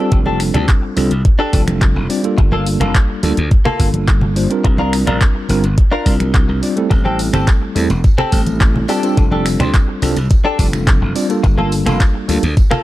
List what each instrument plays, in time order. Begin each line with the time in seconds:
Already playing: tine electric piano G3 C4 D4, clean electric guitar D4 G4 A4
0.00 tine electric piano F4 A4
0.12 slap bass F1, kick, closed hi-hat
0.26 clean electric guitar D4 G4 A4, high conga
0.40 finger snap, open hi-hat
0.54 slap bass D2, clean electric guitar D4 G4 A4, finger snap, closed hi-hat, low conga
0.68 kick, clap, closed hi-hat
0.82 muted clean electric guitar stroke
0.96 slap bass C2, tine electric piano G3 C4 D4 F4 A4, open hi-hat, high conga
1.11 slap bass C2, closed hi-hat
1.25 kick, closed hi-hat
1.39 clean electric guitar D4 G4 A4
1.53 slap bass F1, tine electric piano G3 C4 D4 F4 A4, kick, open hi-hat
1.68 finger snap, closed hi-hat, high conga
1.81 muted clean electric guitar stroke, kick, clap, closed hi-hat
1.95 slap bass F1, muted clean electric guitar stroke
2.09 tine electric piano G3 C4 D4 F4 D5, open hi-hat
2.23 tine electric piano G3 A#3 D4 F4 A4, closed hi-hat
2.38 slap bass G1, muted clean electric guitar stroke, kick, closed hi-hat
2.52 clean electric guitar A#3 F4 A4, high conga
2.66 open hi-hat
2.80 slap bass F1, clean electric guitar A#3 F4 A4, finger snap, closed hi-hat, low conga
2.95 kick, clap, closed hi-hat
3.09 muted clean electric guitar stroke
3.23 slap bass D2, tine electric piano G3 A#3 D4 F4 A4, open hi-hat, high conga
3.37 slap bass D2, closed hi-hat
3.51 kick, closed hi-hat
3.65 clean electric guitar A#3 F4 A4, finger snap, low conga
3.79 slap bass G1, tine electric piano G3 A#3 D4 F4 A4, kick, open hi-hat
3.94 closed hi-hat, high conga
4.08 muted clean electric guitar stroke, kick, clap, closed hi-hat
4.21 muted clean electric guitar stroke, low conga
4.36 tine electric piano G3 A#3 D4 F4 C5, open hi-hat
4.50 tine electric piano G3 C4 D4 F4 A#4, closed hi-hat
4.64 slap bass C2, muted clean electric guitar stroke, kick, closed hi-hat
4.78 clean electric guitar D4 F4 A#4, high conga
4.93 finger snap, open hi-hat
5.07 slap bass A#1, clean electric guitar D4 F4 A#4, finger snap, closed hi-hat, low conga
5.21 kick, clap, closed hi-hat
5.35 muted clean electric guitar stroke
5.49 slap bass G1, tine electric piano G3 C4 D4 F4 A#4, open hi-hat, high conga
5.64 slap bass G1, closed hi-hat
5.78 kick, closed hi-hat
5.92 clean electric guitar D4 F4 A#4
6.06 slap bass C2, tine electric piano G3 C4 D4 F4 A#4, kick, open hi-hat
6.20 finger snap, closed hi-hat, high conga
6.34 muted clean electric guitar stroke, kick, clap, closed hi-hat
6.48 slap bass C2, muted clean electric guitar stroke
6.62 tine electric piano G3 C4 D4 F4 D5, open hi-hat
6.76 tine electric piano G3 A3 C4 E4 A4, closed hi-hat
6.90 slap bass A1, muted clean electric guitar stroke, kick, closed hi-hat, tambourine
7.05 clean electric guitar C4 G4 A4, high conga
7.19 open hi-hat, tambourine
7.33 slap bass G1, clean electric guitar C4 G4 A4, finger snap, closed hi-hat, tambourine, low conga
7.48 kick, clap, closed hi-hat, tambourine
7.62 muted clean electric guitar stroke
7.75 slap bass E2, tine electric piano G3 A3 C4 E4 A4, open hi-hat, tambourine, high conga
7.90 slap bass E1, closed hi-hat, tambourine
8.04 kick, closed hi-hat, tambourine
8.18 clean electric guitar C4 G4 A4, finger snap, low conga
8.32 slap bass A1, tine electric piano G3 A3 C4 E4 A4, kick, open hi-hat, tambourine
8.46 closed hi-hat, tambourine, high conga
8.60 muted clean electric guitar stroke, kick, clap, closed hi-hat, tambourine
8.75 muted clean electric guitar stroke, low conga
8.88 tine electric piano G3 C4 D4 F4 D5, clean electric guitar D4 G4 A4, open hi-hat, tambourine
9.03 tine electric piano G3 C4 D4 F4 A4, closed hi-hat, tambourine
9.17 slap bass F1, kick, closed hi-hat, tambourine
9.31 clean electric guitar D4 G4 A4, high conga
9.46 finger snap, open hi-hat, tambourine
9.60 slap bass D2, clean electric guitar D4 G4 C5, finger snap, closed hi-hat, tambourine, low conga
9.74 kick, clap, closed hi-hat, tambourine
9.88 muted clean electric guitar stroke
10.02 slap bass C2, tine electric piano G3 C4 D4 F4 A4, open hi-hat, tambourine, high conga
10.16 slap bass C2, closed hi-hat, tambourine
10.30 kick, closed hi-hat, tambourine
10.45 clean electric guitar D4 G4 A4
10.58 slap bass F1, tine electric piano G3 C4 D4 F4 A4, kick, open hi-hat, tambourine
10.73 finger snap, closed hi-hat, tambourine, high conga
10.87 muted clean electric guitar stroke, kick, clap, closed hi-hat, tambourine
11.01 slap bass F1, muted clean electric guitar stroke
11.15 tine electric piano G3 C4 D4 F4 D5, open hi-hat, tambourine
11.29 tine electric piano G3 A#3 D4 F4 A4, closed hi-hat, tambourine
11.44 slap bass G1, muted clean electric guitar stroke, kick, closed hi-hat, tambourine
11.58 clean electric guitar A#3 F4 A4, high conga
11.72 open hi-hat, tambourine
11.86 slap bass F1, clean electric guitar A#3 F4 A4, finger snap, closed hi-hat, tambourine, low conga
12.00 kick, clap, closed hi-hat, tambourine
12.14 muted clean electric guitar stroke
12.28 slap bass D2, tine electric piano G3 A#3 D4 F4 A4, open hi-hat, tambourine, high conga
12.43 slap bass D2, closed hi-hat, tambourine
12.57 kick, closed hi-hat, tambourine
12.71 clean electric guitar A#3 F4 A4, finger snap, low conga